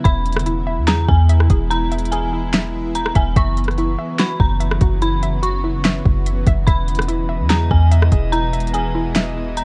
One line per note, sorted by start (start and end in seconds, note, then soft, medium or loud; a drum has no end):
0.05 0.79 E1 loud
0.05 3.33 E3 medium
0.05 3.33 G#3 medium
0.05 9.64 B3 medium
0.05 3.33 E4 medium
0.05 0.66 E5 loud
0.05 0.84 B5 medium
0.05 kick loud
0.05 closed hi-hat medium
0.26 closed hi-hat medium
0.33 cross-stick loud
0.33 closed hi-hat medium
0.40 closed hi-hat medium
0.46 1.70 E4 medium
0.46 closed hi-hat medium
0.67 1.28 E5 medium
0.78 1.07 E2 loud
0.87 1.49 G#4 loud
0.87 1.07 A#5 medium
0.87 snare loud
0.87 closed hi-hat medium
1.09 1.48 E2 loud
1.09 1.28 G#5 medium
1.09 kick loud
1.29 1.90 E5 loud
1.29 closed hi-hat medium
1.40 cross-stick medium
1.50 3.12 E1 loud
1.50 2.11 G#4 medium
1.50 kick loud
1.50 closed hi-hat medium
1.70 2.32 E4 loud
1.70 2.09 A#5 loud
1.70 closed hi-hat medium
1.91 2.52 E5 medium
1.91 closed hi-hat medium
1.98 closed hi-hat medium
2.05 closed hi-hat medium
2.12 3.37 G#4 medium
2.12 2.51 G#5 medium
2.12 closed hi-hat medium
2.33 3.36 E4 medium
2.53 3.14 E5 loud
2.53 snare loud
2.53 closed hi-hat medium
2.95 3.15 A#5 medium
2.95 closed hi-hat medium
3.06 cross-stick loud
3.15 3.35 E1 loud
3.15 3.35 E5 medium
3.15 3.35 G#5 medium
3.15 kick loud
3.15 closed hi-hat medium
3.36 3.96 F#1 loud
3.36 6.64 C#3 medium
3.36 9.64 E3 medium
3.36 6.64 F#3 medium
3.36 3.97 E5 loud
3.36 4.15 C#6 medium
3.36 kick loud
3.36 closed hi-hat medium
3.57 closed hi-hat medium
3.64 cross-stick loud
3.64 closed hi-hat medium
3.71 closed hi-hat medium
3.78 5.01 E4 medium
3.78 closed hi-hat medium
3.98 4.59 E5 medium
4.19 4.80 F#4 loud
4.19 4.39 B5 medium
4.19 snare loud
4.19 closed hi-hat medium
4.40 4.80 F#1 loud
4.40 4.59 A#5 medium
4.40 kick medium
4.60 5.22 E5 medium
4.60 closed hi-hat medium
4.71 cross-stick loud
4.81 6.01 F#1 loud
4.81 5.42 F#4 medium
4.81 kick loud
4.81 closed hi-hat medium
5.02 5.63 E4 loud
5.02 5.41 B5 medium
5.02 closed hi-hat medium
5.23 5.83 E5 medium
5.23 closed hi-hat medium
5.43 6.67 F#4 medium
5.43 5.82 C#6 medium
5.43 closed hi-hat medium
5.64 6.67 E4 medium
5.84 6.46 E5 loud
5.84 snare loud
5.84 closed hi-hat medium
6.05 6.45 F#1 loud
6.05 kick medium
6.26 closed hi-hat medium
6.46 6.66 F#1 loud
6.46 6.66 E5 loud
6.46 kick loud
6.46 closed hi-hat medium
6.67 7.41 E1 loud
6.67 9.64 B2 medium
6.67 9.64 G#3 medium
6.67 9.64 E4 medium
6.67 9.64 D#5 medium
6.67 7.28 E5 loud
6.67 7.46 B5 loud
6.67 kick loud
6.67 closed hi-hat medium
6.88 closed hi-hat medium
6.95 cross-stick loud
6.95 closed hi-hat medium
7.02 closed hi-hat medium
7.08 8.32 E4 medium
7.08 closed hi-hat medium
7.29 7.90 E5 medium
7.40 7.69 E2 loud
7.50 8.11 G#4 loud
7.50 7.69 A#5 medium
7.50 snare loud
7.50 closed hi-hat medium
7.71 8.11 E2 loud
7.71 7.90 G#5 medium
7.71 kick loud
7.92 8.52 E5 loud
7.92 closed hi-hat medium
8.02 cross-stick loud
8.12 9.64 E1 loud
8.12 8.73 G#4 medium
8.12 kick loud
8.12 closed hi-hat medium
8.32 8.94 E4 medium
8.32 8.72 A#5 loud
8.32 closed hi-hat medium
8.53 9.14 E5 medium
8.53 closed hi-hat medium
8.60 closed hi-hat medium
8.67 closed hi-hat medium
8.74 9.64 G#4 medium
8.74 9.13 G#5 medium
8.74 closed hi-hat medium
8.95 9.64 E4 medium
9.15 9.64 E5 loud
9.15 snare loud
9.15 closed hi-hat medium
9.57 9.64 A#5 medium
9.57 closed hi-hat medium